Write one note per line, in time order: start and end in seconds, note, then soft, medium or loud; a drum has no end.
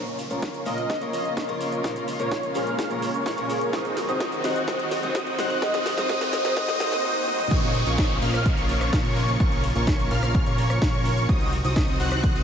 0.00 0.28 A#1 medium
0.00 3.69 C#3 medium
0.00 3.69 F3 medium
0.00 0.17 A#3 medium
0.00 1.82 A#3 medium
0.00 0.17 C#4 medium
0.00 0.17 F4 medium
0.00 3.69 F4 medium
0.00 0.17 A#4 medium
0.00 0.17 C#5 medium
0.00 0.17 C#6 medium
0.00 riser medium
0.07 closed hi-hat soft
0.07 shaker soft
0.19 open hi-hat loud
0.19 shaker medium
0.30 0.64 A#1 medium
0.30 0.40 A#2 medium
0.30 0.40 F3 medium
0.30 0.41 A#3 medium
0.30 0.63 A#3 medium
0.30 0.63 C#4 medium
0.30 0.41 C#4 medium
0.30 0.63 F4 medium
0.30 0.63 A#4 medium
0.30 0.41 A#4 medium
0.30 0.63 C#5 medium
0.30 0.63 C#6 medium
0.30 closed hi-hat soft
0.30 shaker soft
0.42 kick loud
0.42 snare soft
0.42 closed hi-hat medium
0.42 shaker soft
0.54 closed hi-hat soft
0.54 shaker soft
0.65 0.99 A#1 medium
0.65 0.82 A#2 medium
0.65 0.82 F3 medium
0.65 0.82 A#3 medium
0.65 0.99 A#3 medium
0.65 0.99 C#4 medium
0.65 0.82 C#4 medium
0.65 0.99 F4 medium
0.65 0.99 A#4 medium
0.65 0.82 A#4 medium
0.65 1.02 D#5 medium
0.65 0.99 F5 loud
0.65 0.99 F6 loud
0.65 open hi-hat loud
0.65 shaker medium
0.78 closed hi-hat soft
0.78 shaker soft
0.90 kick loud
0.90 snare soft
0.90 closed hi-hat medium
0.90 shaker soft
1.01 1.35 A#1 medium
1.01 1.11 A#2 medium
1.01 1.11 F3 medium
1.01 1.12 A#3 medium
1.01 1.34 A#3 medium
1.01 1.34 C#4 medium
1.01 1.12 C#4 medium
1.01 1.34 F4 medium
1.01 1.34 A#4 medium
1.01 1.12 A#4 medium
1.01 1.34 C#5 medium
1.01 1.34 C#6 medium
1.01 closed hi-hat soft
1.01 shaker soft
1.13 1.21 D#5 medium
1.13 open hi-hat loud
1.13 shaker medium
1.25 1.33 D#5 medium
1.25 closed hi-hat soft
1.25 shaker soft
1.37 1.82 A#1 medium
1.37 1.81 A#3 medium
1.37 1.81 C#4 medium
1.37 1.81 F4 medium
1.37 1.81 A#4 medium
1.37 1.81 C#6 medium
1.37 kick loud
1.37 snare medium
1.37 closed hi-hat medium
1.37 shaker soft
1.48 1.81 A#2 medium
1.48 1.81 F3 medium
1.48 1.81 A#3 medium
1.48 1.82 C#4 medium
1.48 1.82 A#4 loud
1.48 closed hi-hat soft
1.61 open hi-hat loud
1.61 shaker medium
1.72 closed hi-hat soft
1.72 shaker soft
1.83 2.17 A#1 loud
1.83 1.94 A#2 medium
1.83 1.94 F3 medium
1.83 3.71 G#3 medium
1.83 1.94 A#3 medium
1.83 2.06 A#3 medium
1.83 2.06 C#4 medium
1.83 1.94 C#4 medium
1.83 2.06 F4 medium
1.83 2.06 A#4 medium
1.83 1.94 A#4 medium
1.83 2.06 C#5 medium
1.83 kick loud
1.83 snare medium
1.83 closed hi-hat medium
1.83 shaker soft
1.96 closed hi-hat soft
1.96 shaker soft
2.08 open hi-hat loud
2.08 shaker medium
2.19 2.53 A#1 medium
2.19 2.29 A#2 medium
2.19 2.29 F3 medium
2.19 2.30 A#3 medium
2.19 2.52 A#3 medium
2.19 2.52 C#4 medium
2.19 2.30 C#4 medium
2.19 2.52 F4 medium
2.19 2.52 A#4 medium
2.19 2.30 A#4 medium
2.19 2.52 C#5 medium
2.19 2.36 C#5 medium
2.19 2.52 C#6 medium
2.19 closed hi-hat soft
2.19 shaker soft
2.31 kick loud
2.31 snare medium
2.31 closed hi-hat medium
2.31 shaker soft
2.43 closed hi-hat soft
2.43 shaker soft
2.54 2.88 A#1 medium
2.54 2.71 A#2 medium
2.54 2.71 F3 medium
2.54 2.71 A#3 medium
2.54 2.88 A#3 medium
2.54 2.88 C#4 medium
2.54 2.71 C#4 medium
2.54 2.88 F4 medium
2.54 2.72 G#4 medium
2.54 2.88 A#4 medium
2.54 2.71 A#4 loud
2.54 2.88 F5 loud
2.54 2.88 F6 loud
2.54 open hi-hat loud
2.54 shaker medium
2.67 closed hi-hat soft
2.67 shaker soft
2.79 kick loud
2.79 snare medium
2.79 closed hi-hat medium
2.79 shaker soft
2.90 3.24 A#1 loud
2.90 3.00 A#2 medium
2.90 3.00 F3 medium
2.90 3.00 A#3 medium
2.90 3.23 A#3 medium
2.90 3.23 C#4 medium
2.90 3.01 C#4 medium
2.90 3.23 F4 medium
2.90 3.23 A#4 medium
2.90 3.01 A#4 medium
2.90 3.23 C#5 medium
2.90 3.23 C#6 medium
2.90 closed hi-hat soft
2.90 shaker soft
3.02 open hi-hat loud
3.02 shaker medium
3.14 closed hi-hat soft
3.14 shaker soft
3.26 3.71 A#1 medium
3.26 3.70 A#3 medium
3.26 3.70 C#4 medium
3.26 3.70 F4 medium
3.26 3.70 A#4 medium
3.26 3.70 C#5 medium
3.26 3.70 C#6 medium
3.26 kick loud
3.26 snare medium
3.26 open hi-hat medium
3.26 shaker soft
3.37 3.70 A#2 loud
3.37 3.70 F3 medium
3.37 3.70 A#3 medium
3.37 3.71 C#4 medium
3.37 3.71 A#4 loud
3.37 closed hi-hat soft
3.37 shaker soft
3.50 3.73 G#4 medium
3.50 open hi-hat loud
3.50 shaker medium
3.61 closed hi-hat soft
3.61 shaker soft
3.72 4.06 C2 loud
3.72 3.83 C3 medium
3.72 7.01 D#3 medium
3.72 7.01 F#3 medium
3.72 3.83 F#3 medium
3.72 3.83 C4 medium
3.72 3.95 C4 medium
3.72 7.01 C4 medium
3.72 3.95 D#4 medium
3.72 3.83 D#4 medium
3.72 3.95 F#4 medium
3.72 5.60 F#4 medium
3.72 3.95 C5 medium
3.72 3.83 C5 medium
3.72 3.95 D#5 medium
3.72 3.95 D#6 medium
3.72 kick loud
3.72 snare medium
3.72 closed hi-hat medium
3.72 shaker soft
3.85 closed hi-hat soft
3.85 shaker soft
3.97 snare medium
3.97 open hi-hat loud
3.97 shaker medium
4.08 4.42 C2 medium
4.08 4.18 C3 medium
4.08 4.18 F#3 medium
4.08 4.19 C4 medium
4.08 4.41 C4 medium
4.08 4.41 D#4 medium
4.08 4.19 D#4 medium
4.08 4.41 F#4 medium
4.08 4.41 C5 medium
4.08 4.19 C5 medium
4.08 4.41 D#5 medium
4.08 4.41 D#6 medium
4.08 closed hi-hat soft
4.08 shaker soft
4.20 kick loud
4.20 snare medium
4.20 closed hi-hat medium
4.20 shaker soft
4.32 closed hi-hat soft
4.32 shaker soft
4.43 4.65 C2 loud
4.43 4.60 C3 medium
4.43 4.60 F#3 medium
4.43 4.60 C4 medium
4.43 4.66 C4 medium
4.43 4.66 D#4 medium
4.43 4.60 D#4 medium
4.43 4.66 F#4 medium
4.43 4.66 C5 medium
4.43 4.60 C5 medium
4.43 4.66 D#5 medium
4.43 4.66 F#5 medium
4.43 4.66 F#6 medium
4.43 snare medium
4.43 open hi-hat loud
4.43 shaker medium
4.56 closed hi-hat soft
4.56 shaker soft
4.67 5.01 C2 loud
4.67 4.77 C3 medium
4.67 4.78 F#3 medium
4.67 4.78 C4 medium
4.67 4.90 C4 medium
4.67 4.90 D#4 medium
4.67 4.78 D#4 medium
4.67 4.90 F#4 medium
4.67 4.90 C5 medium
4.67 4.78 C5 medium
4.67 4.90 D#5 medium
4.67 4.90 D#6 medium
4.67 kick loud
4.67 snare medium
4.67 closed hi-hat medium
4.67 shaker soft
4.79 closed hi-hat soft
4.79 shaker soft
4.91 snare medium
4.91 open hi-hat loud
4.91 shaker medium
5.02 5.36 C2 loud
5.02 5.13 C3 medium
5.02 5.13 F#3 medium
5.02 5.13 C4 medium
5.02 5.36 C4 medium
5.02 5.36 D#4 medium
5.02 5.13 D#4 medium
5.02 5.36 F#4 medium
5.02 5.36 C5 medium
5.02 5.13 C5 medium
5.02 5.36 D#5 medium
5.02 5.36 D#6 medium
5.02 closed hi-hat soft
5.02 shaker soft
5.15 kick loud
5.15 snare medium
5.15 closed hi-hat medium
5.15 shaker soft
5.27 closed hi-hat soft
5.38 5.60 C2 loud
5.38 5.54 C3 medium
5.38 5.54 F#3 medium
5.38 5.54 C4 medium
5.38 5.60 C4 medium
5.38 5.60 D#4 medium
5.38 5.55 D#4 medium
5.38 5.60 F#4 medium
5.38 5.60 C5 medium
5.38 5.55 C5 medium
5.38 5.60 D#5 medium
5.38 5.60 F#5 loud
5.38 5.60 F#6 loud
5.38 snare medium
5.38 open hi-hat loud
5.38 shaker medium
5.50 closed hi-hat soft
5.50 shaker soft
5.61 5.95 C2 medium
5.61 5.72 C3 medium
5.61 5.72 F#3 medium
5.61 5.72 C4 medium
5.61 5.84 C4 medium
5.61 5.84 D#4 medium
5.61 5.72 D#4 medium
5.61 7.02 F4 medium
5.61 5.84 F#4 medium
5.61 5.84 C5 medium
5.61 5.72 C5 medium
5.61 5.98 D#5 medium
5.61 5.84 D#5 medium
5.61 5.84 D#6 medium
5.61 kick loud
5.61 snare medium
5.61 closed hi-hat medium
5.61 shaker soft
5.74 snare medium
5.74 closed hi-hat soft
5.74 shaker soft
5.86 snare medium
5.86 open hi-hat loud
5.86 shaker medium
5.97 6.07 C2 medium
5.97 6.07 C3 medium
5.97 6.07 F#3 medium
5.97 6.08 C4 medium
5.97 6.08 D#4 medium
5.97 6.08 F#4 medium
5.97 6.08 C5 medium
5.97 6.08 D#5 medium
5.97 6.08 D#6 medium
5.97 snare medium
5.97 closed hi-hat soft
5.97 shaker soft
6.09 6.42 C2 medium
6.09 6.19 C3 medium
6.09 6.19 F#3 medium
6.09 6.19 C4 medium
6.09 6.32 C4 medium
6.09 6.32 D#4 medium
6.09 6.20 D#4 medium
6.09 6.32 F#4 medium
6.09 6.32 C5 medium
6.09 6.20 C5 medium
6.09 6.45 D#5 loud
6.09 6.32 D#5 medium
6.09 6.32 D#6 medium
6.09 kick loud
6.09 snare loud
6.09 closed hi-hat medium
6.09 shaker soft
6.21 snare medium
6.21 closed hi-hat soft
6.21 shaker soft
6.33 snare loud
6.33 open hi-hat loud
6.33 shaker medium
6.44 6.54 C2 loud
6.44 6.54 C3 medium
6.44 6.55 F#3 medium
6.44 6.55 C4 medium
6.44 6.55 D#4 medium
6.44 6.55 F#4 medium
6.44 6.55 C5 medium
6.44 6.55 D#5 medium
6.44 6.55 D#6 medium
6.44 snare medium
6.44 closed hi-hat soft
6.44 shaker soft
6.56 6.78 C2 loud
6.56 6.66 C3 medium
6.56 6.67 C4 medium
6.56 6.78 C4 medium
6.56 6.78 D#4 medium
6.56 6.78 F#4 medium
6.56 6.78 C5 medium
6.56 6.67 C5 medium
6.56 6.78 D#5 medium
6.56 6.78 D#5 loud
6.56 6.78 D#6 medium
6.56 kick loud
6.56 snare loud
6.56 closed hi-hat medium
6.56 swell medium
6.56 shaker soft
6.68 snare medium
6.68 closed hi-hat soft
6.68 shaker soft
6.80 7.02 C2 loud
6.80 6.90 C3 medium
6.80 6.90 F#3 medium
6.80 7.02 C4 medium
6.80 6.90 C4 medium
6.80 7.02 D#4 medium
6.80 6.90 D#4 medium
6.80 7.02 F#4 medium
6.80 7.02 C5 medium
6.80 6.91 C5 medium
6.80 7.02 D#5 medium
6.80 7.02 D#5 loud
6.80 7.02 D#6 medium
6.80 snare loud
6.80 open hi-hat loud
6.80 shaker medium
6.92 snare medium
6.92 closed hi-hat soft
6.92 shaker soft
7.04 7.26 C4 medium
7.04 7.26 D#4 medium
7.04 7.26 F#4 medium
7.04 7.26 C5 medium
7.04 7.26 D#5 loud
7.27 7.49 C4 medium
7.27 7.49 D#4 medium
7.27 7.49 F#4 medium
7.27 7.49 C5 medium
7.27 7.49 D#5 loud
7.27 high tom medium
7.39 mid tom medium
7.51 7.84 A#1 loud
7.51 11.25 C#3 medium
7.51 11.25 F3 medium
7.51 11.25 A#3 medium
7.51 7.73 A#3 medium
7.51 7.73 C#4 medium
7.51 7.73 F4 medium
7.51 11.25 F4 medium
7.51 7.73 A#4 medium
7.51 7.73 C#5 medium
7.51 7.73 C#6 medium
7.51 kick loud
7.51 closed hi-hat medium
7.51 crash loud
7.51 downlifter medium
7.51 shaker medium
7.63 closed hi-hat soft
7.63 shaker soft
7.75 open hi-hat loud
7.86 8.20 A#1 medium
7.86 8.19 A#3 medium
7.86 8.19 C#4 medium
7.86 8.19 F4 medium
7.86 8.19 A#4 medium
7.86 8.19 C#5 medium
7.86 8.19 C#6 medium
7.86 closed hi-hat soft
7.86 shaker medium
7.98 kick loud
7.98 snare loud
7.98 closed hi-hat medium
7.98 shaker medium
8.10 closed hi-hat soft
8.10 shaker soft
8.22 8.55 A#1 loud
8.22 8.55 A#3 medium
8.22 8.55 C#4 medium
8.22 8.55 F4 medium
8.22 8.55 A#4 medium
8.22 8.55 F5 loud
8.22 8.55 F6 loud
8.22 open hi-hat loud
8.34 cross-stick medium
8.34 closed hi-hat soft
8.34 shaker medium
8.46 kick loud
8.46 closed hi-hat medium
8.46 shaker medium
8.57 8.91 A#1 loud
8.57 8.90 A#3 medium
8.57 8.90 C#4 medium
8.57 8.90 F4 medium
8.57 8.90 A#4 medium
8.57 8.90 C#5 medium
8.57 8.90 C#6 medium
8.57 closed hi-hat soft
8.57 shaker soft
8.69 open hi-hat loud
8.81 cross-stick medium
8.81 closed hi-hat soft
8.81 shaker medium
8.93 9.38 A#1 loud
8.93 9.37 A#3 medium
8.93 9.37 C#4 medium
8.93 9.37 F4 medium
8.93 9.37 A#4 medium
8.93 9.37 C#5 medium
8.93 9.37 C#6 medium
8.93 kick loud
8.93 snare loud
8.93 closed hi-hat loud
8.93 shaker medium
9.05 closed hi-hat soft
9.05 shaker soft
9.16 open hi-hat loud
9.28 closed hi-hat soft
9.28 shaker medium
9.40 9.73 A#1 loud
9.40 9.62 A#3 medium
9.40 9.62 C#4 medium
9.40 9.62 F4 medium
9.40 9.62 A#4 medium
9.40 9.62 C#5 medium
9.40 9.62 C#6 medium
9.40 kick loud
9.40 closed hi-hat medium
9.40 shaker medium
9.52 closed hi-hat soft
9.52 shaker soft
9.64 open hi-hat loud
9.75 10.09 A#1 loud
9.75 10.08 A#3 medium
9.75 10.08 C#4 medium
9.75 10.08 F4 medium
9.75 10.08 A#4 medium
9.75 10.08 C#5 medium
9.75 10.08 C#6 medium
9.75 closed hi-hat soft
9.75 shaker medium
9.87 kick loud
9.87 snare loud
9.87 closed hi-hat loud
9.87 shaker medium
9.99 closed hi-hat soft
9.99 shaker soft
10.11 10.44 A#1 medium
10.11 10.44 A#3 medium
10.11 10.44 C#4 medium
10.11 10.44 F4 medium
10.11 10.44 A#4 medium
10.11 10.44 F5 loud
10.11 10.44 F6 loud
10.11 open hi-hat loud
10.23 cross-stick medium
10.23 closed hi-hat soft
10.23 shaker medium
10.35 kick loud
10.35 closed hi-hat medium
10.35 shaker medium
10.46 10.79 A#1 loud
10.46 10.79 A#3 medium
10.46 10.79 C#4 medium
10.46 10.79 F4 medium
10.46 10.79 A#4 medium
10.46 10.79 C#5 medium
10.46 10.79 C#6 medium
10.46 closed hi-hat soft
10.46 shaker soft
10.58 open hi-hat loud
10.70 cross-stick medium
10.70 closed hi-hat soft
10.70 shaker medium
10.82 11.27 A#1 loud
10.82 11.26 C#6 medium
10.82 kick loud
10.82 snare loud
10.82 open hi-hat medium
10.82 shaker medium
10.94 closed hi-hat soft
10.94 shaker soft
11.05 open hi-hat loud
11.17 closed hi-hat soft
11.17 shaker medium
11.29 11.62 C2 loud
11.29 12.43 D#3 medium
11.29 12.43 F#3 medium
11.29 11.51 C4 medium
11.29 12.43 C4 medium
11.29 11.51 D#4 medium
11.29 11.51 F#4 medium
11.29 12.43 F#4 medium
11.29 11.51 C5 medium
11.29 11.51 D#5 medium
11.29 11.51 D#6 medium
11.29 kick loud
11.29 closed hi-hat medium
11.29 shaker medium
11.41 closed hi-hat soft
11.41 shaker soft
11.53 open hi-hat loud
11.64 11.98 C2 medium
11.64 11.97 C4 medium
11.64 11.97 D#4 medium
11.64 11.97 F#4 medium
11.64 11.97 C5 medium
11.64 11.97 D#5 medium
11.64 11.97 D#6 medium
11.64 closed hi-hat soft
11.64 shaker medium
11.76 kick loud
11.76 snare loud
11.76 closed hi-hat medium
11.76 shaker medium
11.88 closed hi-hat soft
11.88 shaker soft
12.00 12.33 C2 loud
12.00 12.32 C4 medium
12.00 12.32 D#4 medium
12.00 12.33 F#4 medium
12.00 12.32 C5 medium
12.00 12.33 F#5 loud
12.00 12.33 F#6 loud
12.00 open hi-hat loud
12.12 cross-stick medium
12.12 closed hi-hat soft
12.12 shaker medium
12.23 kick loud
12.23 closed hi-hat medium
12.23 shaker medium
12.35 12.43 C2 loud
12.35 12.43 C4 medium
12.35 12.43 D#4 medium
12.35 12.43 F#4 medium
12.35 12.43 C5 medium
12.35 12.43 D#5 medium
12.35 12.43 D#6 medium
12.35 closed hi-hat soft
12.35 shaker soft